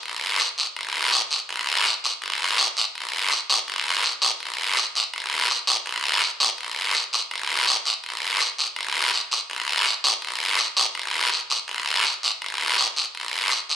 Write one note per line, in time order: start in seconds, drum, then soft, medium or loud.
0.03 long guiro medium
0.40 short guiro medium
0.58 short guiro medium
0.76 long guiro medium
1.12 short guiro medium
1.31 short guiro medium
1.49 long guiro medium
1.86 short guiro medium
2.04 short guiro medium
2.22 long guiro medium
2.58 short guiro medium
2.77 short guiro medium
2.95 long guiro medium
3.31 short guiro medium
3.50 short guiro medium
3.68 long guiro medium
4.04 short guiro medium
4.22 short guiro medium
4.40 long guiro medium
4.77 short guiro medium
4.95 short guiro medium
5.14 long guiro medium
5.50 short guiro medium
5.67 short guiro medium
5.86 long guiro medium
6.22 short guiro medium
6.40 short guiro medium
6.58 long guiro medium
6.95 short guiro medium
7.13 short guiro medium
7.31 long guiro medium
7.67 short guiro medium
7.85 short guiro medium
8.04 long guiro medium
8.40 short guiro medium
8.58 short guiro medium
8.76 long guiro medium
9.13 short guiro medium
9.31 short guiro medium
9.50 long guiro medium
9.86 short guiro medium
10.04 short guiro medium
10.22 long guiro medium
10.59 short guiro medium
10.77 short guiro medium
10.95 long guiro medium
11.32 short guiro medium
11.50 short guiro medium
11.68 long guiro medium
12.05 short guiro medium
12.23 short guiro medium
12.42 long guiro medium
12.78 short guiro medium
12.96 short guiro medium
13.15 long guiro medium
13.51 short guiro medium
13.69 short guiro medium